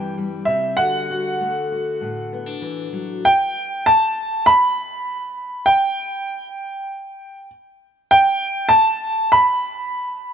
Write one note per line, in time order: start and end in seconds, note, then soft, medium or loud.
0.00 0.44 G2 soft
0.00 0.45 E3 soft
0.00 0.16 G3 soft
0.00 0.45 C4 soft
0.00 0.78 E4 soft
0.00 0.14 G5 soft
0.18 1.40 G3 soft
0.45 0.75 C3 soft
0.45 0.76 C4 soft
0.45 0.79 E5 medium
0.77 2.61 D3 soft
0.77 1.09 F#4 soft
0.77 2.58 F#5 medium
1.10 1.71 F#4 soft
1.41 3.21 A3 soft
1.72 3.21 F#4 soft
2.01 3.24 A2 soft
2.33 2.46 B3 soft
2.46 3.23 D4 soft
2.62 2.92 E3 soft
2.93 3.24 F#3 soft
3.25 3.88 G5 medium
3.86 4.49 A5 medium
4.46 5.64 B5 medium
5.66 7.46 G5 medium
8.11 8.68 G5 medium
8.69 9.33 A5 medium
9.32 10.33 B5 medium